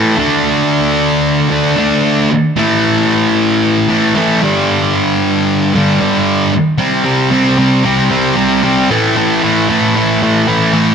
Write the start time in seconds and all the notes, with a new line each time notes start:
Already playing: A2 E3 A3
0.18 D3 A3 D4
1.49 D3 A3 D4
1.77 D3 A3 D4
2.56 A2 E3 A3
3.89 A2 E3 A3
4.15 A2 E3 A3
4.41 G2 D3 G3
5.75 G2 D3 G3
6.00 G2 D3 G3
6.78 C3 G3 C4
7.04 C3 G3 C4
7.31 C3 G3 C4
7.58 C3 G3 C4
7.84 C3 G3 C4
8.10 C3 G3 C4
8.36 C3 G3 C4
8.63 C3 G3 C4
8.91 A2 E3 A3
9.17 A2 E3 A3
9.42 A2 E3 A3
9.69 A2 E3 A3
9.95 A2 E3 A3
10.23 A2 E3 A3
10.48 A2 E3 A3
10.73 A2 E3 A3